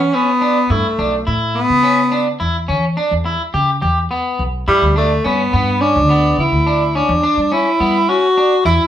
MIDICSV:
0, 0, Header, 1, 4, 480
1, 0, Start_track
1, 0, Tempo, 568182
1, 595, Time_signature, 7, 2, 24, 8
1, 7493, End_track
2, 0, Start_track
2, 0, Title_t, "Clean electric guitar"
2, 0, Program_c, 0, 27
2, 112, Note_on_c, 0, 61, 65
2, 247, Note_off_c, 0, 61, 0
2, 350, Note_on_c, 0, 62, 68
2, 485, Note_off_c, 0, 62, 0
2, 594, Note_on_c, 0, 64, 74
2, 728, Note_off_c, 0, 64, 0
2, 835, Note_on_c, 0, 62, 66
2, 969, Note_off_c, 0, 62, 0
2, 1071, Note_on_c, 0, 64, 68
2, 1339, Note_off_c, 0, 64, 0
2, 1550, Note_on_c, 0, 61, 74
2, 1684, Note_off_c, 0, 61, 0
2, 1788, Note_on_c, 0, 62, 74
2, 1923, Note_off_c, 0, 62, 0
2, 2027, Note_on_c, 0, 64, 75
2, 2162, Note_off_c, 0, 64, 0
2, 2267, Note_on_c, 0, 61, 67
2, 2402, Note_off_c, 0, 61, 0
2, 2509, Note_on_c, 0, 62, 79
2, 2643, Note_off_c, 0, 62, 0
2, 2750, Note_on_c, 0, 64, 64
2, 2884, Note_off_c, 0, 64, 0
2, 2990, Note_on_c, 0, 67, 76
2, 3124, Note_off_c, 0, 67, 0
2, 3228, Note_on_c, 0, 67, 62
2, 3363, Note_off_c, 0, 67, 0
2, 3470, Note_on_c, 0, 59, 69
2, 3738, Note_off_c, 0, 59, 0
2, 3951, Note_on_c, 0, 64, 91
2, 4085, Note_off_c, 0, 64, 0
2, 4189, Note_on_c, 0, 62, 67
2, 4324, Note_off_c, 0, 62, 0
2, 4430, Note_on_c, 0, 61, 66
2, 4564, Note_off_c, 0, 61, 0
2, 4672, Note_on_c, 0, 59, 70
2, 4806, Note_off_c, 0, 59, 0
2, 4908, Note_on_c, 0, 61, 76
2, 5043, Note_off_c, 0, 61, 0
2, 5154, Note_on_c, 0, 59, 69
2, 5422, Note_off_c, 0, 59, 0
2, 5631, Note_on_c, 0, 62, 66
2, 5766, Note_off_c, 0, 62, 0
2, 5874, Note_on_c, 0, 61, 79
2, 6008, Note_off_c, 0, 61, 0
2, 6111, Note_on_c, 0, 62, 70
2, 6246, Note_off_c, 0, 62, 0
2, 6350, Note_on_c, 0, 61, 68
2, 6486, Note_off_c, 0, 61, 0
2, 6592, Note_on_c, 0, 59, 71
2, 6727, Note_off_c, 0, 59, 0
2, 6834, Note_on_c, 0, 61, 67
2, 6969, Note_off_c, 0, 61, 0
2, 7075, Note_on_c, 0, 62, 69
2, 7210, Note_off_c, 0, 62, 0
2, 7311, Note_on_c, 0, 64, 84
2, 7448, Note_off_c, 0, 64, 0
2, 7493, End_track
3, 0, Start_track
3, 0, Title_t, "Tenor saxophone"
3, 0, Program_c, 1, 66
3, 0, Note_on_c, 1, 61, 95
3, 124, Note_on_c, 1, 59, 87
3, 137, Note_off_c, 1, 61, 0
3, 603, Note_on_c, 1, 57, 75
3, 615, Note_off_c, 1, 59, 0
3, 1078, Note_off_c, 1, 57, 0
3, 1313, Note_on_c, 1, 59, 101
3, 1998, Note_off_c, 1, 59, 0
3, 3955, Note_on_c, 1, 55, 89
3, 4176, Note_off_c, 1, 55, 0
3, 4202, Note_on_c, 1, 57, 80
3, 4442, Note_on_c, 1, 59, 85
3, 4455, Note_off_c, 1, 57, 0
3, 4913, Note_on_c, 1, 62, 93
3, 4926, Note_off_c, 1, 59, 0
3, 5393, Note_off_c, 1, 62, 0
3, 5405, Note_on_c, 1, 64, 78
3, 5877, Note_on_c, 1, 62, 89
3, 5889, Note_off_c, 1, 64, 0
3, 6366, Note_on_c, 1, 64, 96
3, 6378, Note_off_c, 1, 62, 0
3, 6837, Note_on_c, 1, 66, 97
3, 6850, Note_off_c, 1, 64, 0
3, 7307, Note_off_c, 1, 66, 0
3, 7312, Note_on_c, 1, 64, 114
3, 7493, Note_off_c, 1, 64, 0
3, 7493, End_track
4, 0, Start_track
4, 0, Title_t, "Upright bass"
4, 0, Program_c, 2, 32
4, 588, Note_on_c, 2, 43, 88
4, 691, Note_off_c, 2, 43, 0
4, 830, Note_on_c, 2, 35, 77
4, 1033, Note_off_c, 2, 35, 0
4, 1075, Note_on_c, 2, 45, 77
4, 1376, Note_off_c, 2, 45, 0
4, 1432, Note_on_c, 2, 49, 70
4, 1935, Note_off_c, 2, 49, 0
4, 2033, Note_on_c, 2, 40, 78
4, 2271, Note_on_c, 2, 52, 72
4, 2284, Note_off_c, 2, 40, 0
4, 2472, Note_off_c, 2, 52, 0
4, 2629, Note_on_c, 2, 40, 78
4, 2831, Note_off_c, 2, 40, 0
4, 2990, Note_on_c, 2, 49, 82
4, 3191, Note_off_c, 2, 49, 0
4, 3229, Note_on_c, 2, 40, 86
4, 3431, Note_off_c, 2, 40, 0
4, 3710, Note_on_c, 2, 35, 76
4, 3911, Note_off_c, 2, 35, 0
4, 3948, Note_on_c, 2, 43, 85
4, 4049, Note_off_c, 2, 43, 0
4, 4070, Note_on_c, 2, 38, 78
4, 4372, Note_off_c, 2, 38, 0
4, 4432, Note_on_c, 2, 43, 80
4, 4633, Note_off_c, 2, 43, 0
4, 4674, Note_on_c, 2, 43, 88
4, 5034, Note_on_c, 2, 38, 87
4, 5046, Note_off_c, 2, 43, 0
4, 5335, Note_off_c, 2, 38, 0
4, 5389, Note_on_c, 2, 49, 76
4, 5491, Note_off_c, 2, 49, 0
4, 5504, Note_on_c, 2, 38, 73
4, 5911, Note_off_c, 2, 38, 0
4, 5988, Note_on_c, 2, 40, 94
4, 6091, Note_off_c, 2, 40, 0
4, 6228, Note_on_c, 2, 55, 76
4, 6432, Note_off_c, 2, 55, 0
4, 6590, Note_on_c, 2, 55, 76
4, 6794, Note_off_c, 2, 55, 0
4, 7310, Note_on_c, 2, 40, 89
4, 7414, Note_off_c, 2, 40, 0
4, 7493, End_track
0, 0, End_of_file